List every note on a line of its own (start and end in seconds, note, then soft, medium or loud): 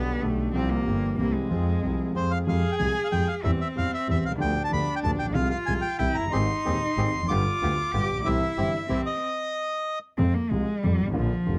0.00 0.21 B1 medium
0.00 0.21 B1 soft
0.00 0.21 B2 soft
0.00 0.19 D3 soft
0.00 0.21 G3 soft
0.00 0.20 B3 soft
0.00 0.22 B3 soft
0.00 0.22 B3 medium
0.00 0.20 D4 soft
0.00 0.20 G4 soft
0.00 0.22 G4 soft
0.21 0.52 B1 medium
0.21 0.53 B1 soft
0.21 0.53 B2 soft
0.21 0.52 D3 soft
0.21 0.53 G3 soft
0.21 0.54 A3 medium
0.21 0.52 B3 soft
0.21 0.53 B3 soft
0.21 0.53 D4 soft
0.21 0.52 G4 soft
0.25 0.54 G4 soft
0.53 0.84 C2 medium
0.53 0.85 C2 medium
0.53 0.85 C3 medium
0.53 0.83 F3 medium
0.53 0.84 G3 medium
0.53 0.84 C4 medium
0.53 0.71 C4 medium
0.53 0.85 C4 medium
0.53 0.84 F4 medium
0.53 0.84 G4 medium
0.53 0.86 G4 medium
0.70 1.18 A#3 medium
0.85 1.17 G1 medium
0.85 1.17 G1 soft
0.85 1.17 G2 soft
0.85 1.16 F3 soft
0.85 1.16 G3 soft
0.85 1.16 C4 soft
0.85 1.17 C4 soft
0.85 1.17 F4 soft
0.85 1.16 G4 soft
0.89 1.18 G4 soft
1.17 1.49 C2 soft
1.17 1.49 C3 soft
1.17 1.48 E3 soft
1.17 1.48 G3 soft
1.17 1.36 A#3 medium
1.17 1.48 C4 soft
1.17 1.49 C4 soft
1.17 1.48 E4 soft
1.17 1.48 G4 soft
1.21 1.50 G4 soft
1.34 2.15 G#3 medium
1.49 1.81 F2 medium
1.49 1.79 F3 medium
1.49 1.81 G#3 soft
1.49 1.80 C4 medium
1.49 1.81 C4 soft
1.49 1.80 F4 soft
1.49 1.80 G#4 medium
1.49 1.82 G#4 medium
1.81 2.14 C2 soft
1.81 2.14 C2 medium
1.81 2.14 C3 soft
1.81 2.11 F3 soft
1.81 2.12 G#3 soft
1.81 2.12 C4 soft
1.81 2.14 C4 soft
1.81 2.13 F4 soft
1.81 2.13 G#4 soft
1.85 2.14 G#4 soft
2.13 2.45 F2 soft
2.13 2.46 F2 soft
2.13 2.45 F3 soft
2.13 2.45 G#3 soft
2.13 2.45 C4 soft
2.13 2.46 C4 soft
2.13 2.45 F4 soft
2.13 2.45 G#4 soft
2.13 2.46 G#4 soft
2.13 2.32 C5 medium
2.31 2.38 F5 medium
2.47 2.61 F2 medium
2.47 2.61 F3 medium
2.47 2.61 G#3 medium
2.47 2.61 C4 medium
2.47 2.61 G4 medium
2.47 3.46 G#4 medium
2.47 2.71 F5 medium
2.72 2.75 G5 medium
2.79 2.93 C2 medium
2.79 2.93 C2 soft
2.79 2.93 C3 soft
2.79 2.93 F3 soft
2.79 2.93 G#3 soft
2.79 2.93 C4 soft
2.79 2.93 G4 soft
2.79 3.01 G#5 medium
3.04 3.08 F5 medium
3.12 3.25 F2 medium
3.12 3.25 F2 soft
3.12 3.25 F3 soft
3.12 3.25 G#3 soft
3.12 3.25 C4 soft
3.12 3.25 G4 soft
3.12 3.28 G5 medium
3.28 3.35 F5 medium
3.44 3.57 E2 medium
3.44 3.58 E2 medium
3.44 3.58 E3 medium
3.44 3.58 G3 medium
3.44 4.40 C4 medium
3.44 3.58 C4 medium
3.44 3.58 G4 medium
3.44 3.51 E5 medium
3.61 3.68 E5 medium
3.76 3.89 E2 medium
3.76 3.90 E2 soft
3.76 3.89 E3 soft
3.76 3.89 G3 soft
3.76 3.89 C4 soft
3.76 3.89 G4 soft
3.76 3.91 F5 medium
3.94 4.08 E5 medium
4.08 4.21 E2 medium
4.08 4.21 E3 soft
4.08 4.21 G3 soft
4.08 4.22 C4 soft
4.08 4.21 G4 soft
4.08 4.24 E5 medium
4.24 4.40 C2 medium
4.24 4.32 F5 medium
4.28 4.32 B1 soft
4.28 4.35 C2 medium
4.35 4.39 C#2 medium
4.35 4.52 D2 medium
4.35 4.52 D3 medium
4.35 4.52 F3 medium
4.35 4.52 B3 medium
4.35 4.52 D4 medium
4.35 4.53 G4 medium
4.40 4.53 D2 medium
4.40 5.36 D4 medium
4.40 4.63 G5 medium
4.64 4.71 A5 medium
4.70 4.84 D2 soft
4.70 4.85 D2 medium
4.70 4.84 D3 soft
4.70 4.84 F3 soft
4.70 4.84 B3 soft
4.70 4.84 D4 soft
4.70 4.84 G4 medium
4.70 4.95 B5 medium
4.96 4.99 G5 medium
5.03 5.17 D2 soft
5.03 5.17 D2 medium
5.03 5.17 D3 medium
5.03 5.17 F3 soft
5.03 5.17 B3 soft
5.03 5.17 D4 soft
5.03 5.17 G4 soft
5.03 5.11 A5 medium
5.19 5.27 A1 soft
5.19 5.35 A#1 soft
5.19 5.26 G5 medium
5.26 5.31 A#1 medium
5.30 5.35 B1 medium
5.34 5.49 C2 medium
5.34 5.49 C3 medium
5.34 5.49 F3 medium
5.34 5.49 G#3 soft
5.34 5.49 C4 medium
5.34 6.01 F4 medium
5.34 5.49 G#4 medium
5.34 5.49 F5 medium
5.50 5.58 F5 medium
5.66 5.81 C2 soft
5.66 5.82 C2 medium
5.66 5.82 C3 medium
5.66 5.81 F3 soft
5.66 5.81 G#3 soft
5.66 5.82 C4 soft
5.66 5.82 G#4 soft
5.66 5.74 G#5 medium
5.81 5.97 G5 medium
5.99 6.14 C2 soft
5.99 6.14 C2 medium
5.99 6.14 C3 soft
5.99 6.14 E3 soft
5.99 6.14 G3 soft
5.99 6.14 C4 soft
5.99 6.31 E4 medium
5.99 6.14 G4 soft
5.99 6.16 G5 medium
6.15 6.32 F#1 medium
6.15 6.32 A#5 medium
6.20 6.24 F1 soft
6.25 6.29 F#1 soft
6.30 6.33 G1 medium
6.30 6.46 G#1 medium
6.30 6.46 C4 medium
6.30 7.25 D#4 medium
6.30 6.46 G4 medium
6.30 6.46 G#4 medium
6.30 7.32 C6 medium
6.34 6.47 G#1 medium
6.34 6.47 G#2 medium
6.34 6.47 D#3 medium
6.34 6.47 G#3 soft
6.34 6.47 C4 medium
6.34 6.47 G4 medium
6.65 6.79 D#1 soft
6.65 6.79 D#2 medium
6.65 6.79 D#2 soft
6.65 6.79 D#3 soft
6.65 6.79 G#3 soft
6.65 6.79 C4 soft
6.65 6.80 C4 soft
6.65 6.79 G4 soft
6.65 6.80 G4 soft
6.65 6.79 G#4 soft
6.97 7.11 G#1 medium
6.97 7.11 G#1 soft
6.97 7.11 G#2 soft
6.97 7.11 D#3 soft
6.97 7.11 G#3 soft
6.97 7.11 C4 soft
6.97 7.12 C4 soft
6.97 7.11 G4 soft
6.97 7.12 G4 soft
6.97 7.11 G#4 soft
7.14 7.30 F1 soft
7.19 7.22 E2 soft
7.19 7.26 F2 medium
7.25 7.30 F#2 medium
7.25 8.28 D6 medium
7.29 7.43 G1 medium
7.29 7.44 G1 medium
7.29 7.43 G2 medium
7.29 7.43 D3 medium
7.29 7.43 G3 medium
7.29 7.43 B3 medium
7.29 7.43 F4 medium
7.29 7.44 F4 medium
7.29 7.94 F4 medium
7.29 7.43 G4 medium
7.61 7.75 D2 soft
7.61 7.75 D2 medium
7.61 7.75 D3 medium
7.61 7.75 G3 soft
7.61 7.75 B3 soft
7.61 7.75 F4 soft
7.61 7.76 F4 soft
7.61 7.76 G4 medium
7.92 8.07 G1 medium
7.92 8.08 G1 soft
7.92 8.08 G2 medium
7.92 8.08 D3 soft
7.92 8.08 G3 soft
7.92 8.07 B3 soft
7.92 8.08 B3 soft
7.92 8.07 F4 soft
7.92 8.08 F4 soft
7.92 8.24 G4 medium
7.92 8.07 G4 soft
8.10 8.25 A#1 medium
8.15 8.19 A1 soft
8.20 8.23 A#1 medium
8.24 8.27 B1 medium
8.24 8.39 C2 medium
8.24 8.40 C2 medium
8.24 8.40 C3 medium
8.24 8.40 E3 medium
8.24 8.40 G3 medium
8.24 8.39 C4 medium
8.24 8.40 C4 medium
8.24 8.85 E4 medium
8.24 8.39 E4 medium
8.24 8.39 G4 medium
8.24 9.01 E5 medium
8.29 8.41 G4 medium
8.57 8.71 G1 medium
8.57 8.72 G1 medium
8.57 8.72 G2 medium
8.57 8.71 E3 soft
8.57 8.72 G3 soft
8.57 8.71 C4 soft
8.57 8.72 C4 soft
8.57 8.71 E4 soft
8.57 8.71 G4 medium
8.57 8.72 G4 soft
8.89 9.03 C2 soft
8.89 9.03 C2 medium
8.89 9.03 C3 soft
8.89 9.03 E3 soft
8.89 9.03 G3 soft
8.89 9.03 C4 soft
8.89 9.20 C4 medium
8.89 9.03 E4 soft
8.89 9.03 G4 medium
8.89 9.03 G4 soft
9.06 9.99 D#5 medium
10.18 10.32 F2 medium
10.18 10.32 C3 medium
10.18 10.32 F3 medium
10.18 10.32 G#3 medium
10.18 10.36 C4 medium
10.18 10.32 F4 medium
10.35 10.52 A#3 medium
10.50 10.65 C2 medium
10.50 10.65 C3 medium
10.50 10.65 F3 soft
10.50 10.85 G#3 medium
10.50 10.65 G#3 soft
10.50 10.65 F4 soft
10.83 10.97 F2 soft
10.83 10.97 F2 medium
10.83 10.97 C3 soft
10.83 10.97 F3 medium
10.83 11.14 G3 medium
10.83 10.97 G#3 soft
10.83 10.97 F4 soft
10.99 11.15 G#1 medium
11.03 11.07 G1 soft
11.03 11.11 G#1 medium
11.11 11.15 A1 medium
11.11 11.28 A#1 medium
11.11 11.28 A#2 medium
11.11 11.28 D3 medium
11.11 11.28 F3 medium
11.11 11.59 F3 medium
11.11 11.28 A#3 medium
11.11 11.28 F4 medium
11.16 11.29 A#1 medium
11.46 11.59 F1 medium
11.46 11.59 F2 medium
11.46 11.59 D3 soft
11.46 11.59 F3 soft
11.46 11.59 A#3 soft
11.46 11.59 F4 medium